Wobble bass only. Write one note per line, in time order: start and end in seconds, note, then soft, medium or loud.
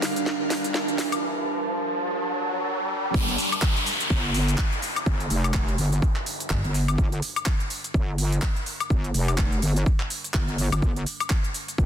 3.14 3.37 G1 loud
4.10 4.57 G1 medium
5.06 5.29 G1 medium
5.30 5.77 F1 loud
5.78 6.01 G1 loud
6.64 6.97 G1 loud
6.98 7.21 G1 loud
7.94 8.41 G1 loud
8.90 9.13 G1 loud
9.14 9.61 F1 medium
9.62 9.85 G1 loud
10.34 10.70 G1 loud
10.72 10.81 G1 loud
10.82 11.05 G1 loud
11.78 11.86 G1 medium